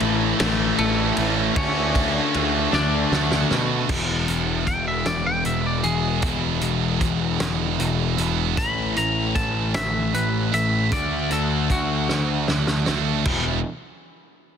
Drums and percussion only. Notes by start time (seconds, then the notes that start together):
0.00 ride
0.40 snare, ride
0.79 ride
1.17 ride
1.56 kick, ride
1.95 kick, ride
2.34 ride
2.73 snare
3.13 snare
3.31 snare
3.51 snare
3.89 kick, crash
4.28 closed hi-hat
4.67 kick, closed hi-hat
5.06 snare, closed hi-hat
5.45 closed hi-hat
5.84 closed hi-hat
6.22 kick, closed hi-hat
6.61 closed hi-hat
7.01 kick, closed hi-hat
7.40 snare, closed hi-hat
7.80 closed hi-hat
8.18 closed hi-hat
8.57 kick, closed hi-hat
8.96 closed hi-hat
9.35 kick, closed hi-hat
9.74 snare, closed hi-hat
10.14 closed hi-hat
10.54 closed hi-hat
10.92 kick, closed hi-hat
11.31 closed hi-hat
11.70 kick, closed hi-hat
12.09 snare
12.48 snare
12.67 snare
12.86 snare
13.25 kick, crash